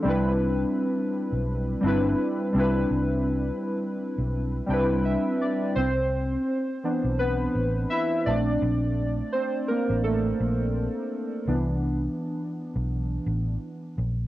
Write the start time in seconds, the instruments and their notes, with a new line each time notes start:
0.02 fingered electric bass C2, synth keys G3 C4 D4
0.07 synth keys E4 B4
1.32 fingered electric bass B1
1.81 fingered electric bass G1, synth keys G3 C4 D4
1.86 synth keys E4 B4
2.53 fingered electric bass C2, synth keys G3 C4 D4
2.58 synth keys E4 B4
2.91 fingered electric bass C2
4.18 fingered electric bass B1
4.66 fingered electric bass C2, synth keys G3 C4 D4 G5
4.71 synth keys E4 B4
5.05 synth keys E5
5.41 synth keys D5
5.75 fingered electric bass C2, synth keys C4 C5
6.83 synth keys E3 B3 D4
7.04 fingered electric bass B1
7.19 synth keys B3 B4
7.55 fingered electric bass A1
7.90 synth keys E4 E5
8.26 fingered electric bass A#1, synth keys A3 C4 D4 D5
8.62 fingered electric bass A#1
9.32 synth keys C4 C5
9.68 synth keys A#3 A#4
9.90 fingered electric bass A1
10.04 synth keys A3 A4
10.40 fingered electric bass A#1
11.47 fingered electric bass C2, synth keys E3 B3 D4
12.76 fingered electric bass B1
13.26 fingered electric bass A1
13.98 fingered electric bass A#1